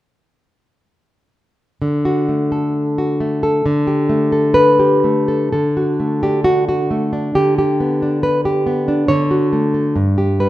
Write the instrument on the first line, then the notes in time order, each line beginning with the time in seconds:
nylon-string guitar
1.82 D3
2.05 F#4
2.29 A3
2.52 A4
2.98 F#4
3.20 A3
3.43 A4
3.66 D3
3.87 G4
4.09 A3
4.32 A4
4.54 B4
4.79 G4
5.04 A3
5.28 A4
5.53 D3 A4
5.77 F#4
6.00 A3
6.23 D4 G4
6.44 F#4
6.69 F#4
6.91 A3
7.13 D4
7.35 D3 G4
7.58 G4
7.80 B3
8.02 D4
8.23 B4
8.45 G4
8.66 B3
8.88 D4
9.08 D3 C#5
9.31 F#4
9.53 A3
9.74 A4
9.96 G2
10.18 G4
10.40 G3 B4